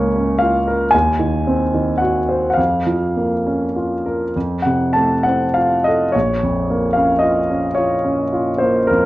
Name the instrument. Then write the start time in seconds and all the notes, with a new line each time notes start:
grand piano
Already playing: C#2 C#3 A#3 C#5
0.16 C#4
0.39 F4 F5
0.68 A#4
0.91 D#2 G#5
1.20 D#3
1.47 C4
1.75 D#3
1.98 F#4 F#5
2.29 C5
2.50 F5 F#5
2.57 F2
2.86 F3
3.17 A#3
3.46 C#4
3.76 F4
4.06 A#4
4.36 F2
4.62 C3 F#5
4.93 A3 A5
5.23 C4 F#5
5.54 F4 F5
5.84 A4 D#5
6.12 A#1 C#5
6.43 F2
6.70 A#3
6.93 C#4 F5
7.19 F4 D#5
7.50 C#4
7.75 F4 C#5
8.04 C#4
8.33 F4
8.58 A#3 C5
8.87 F2 A#4